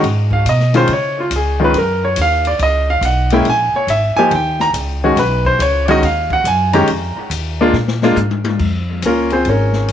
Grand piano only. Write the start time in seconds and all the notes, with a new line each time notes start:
0.33 F5
0.49 D#5
0.75 D#3 G#3 C#4 F4 C5
0.93 C#5
1.20 F4
1.36 G#4
1.60 D#3 G#3 C#4 F4
1.64 B4
1.78 A#4
2.05 C#5
2.22 F5
2.47 D5
2.63 D#5
2.90 F5
3.05 F#5
3.32 G#3 A#3 C#4 E4 G5
3.50 G#5
3.76 C#5
3.90 E5
4.17 F3 A#3 D#4 G4 G#5
4.35 G5
4.61 A#5
5.04 D#3 G#3 C#4 F#4
5.19 B4
5.46 C5
5.62 C#5
5.86 D#3 G#3 C#4 F#4 D5
5.91 D#5
6.05 F5
6.33 F#5
6.48 G#5
6.74 D#3 G#3 C#4 G4 A#5
7.61 G#3 A#3 D4 F4
8.03 G#3 A#3 D4 F4
9.06 A#3 C#4 F4 A#4
9.32 C4 F4 G#4 C5
9.49 C#4 G#4 A#4 C#5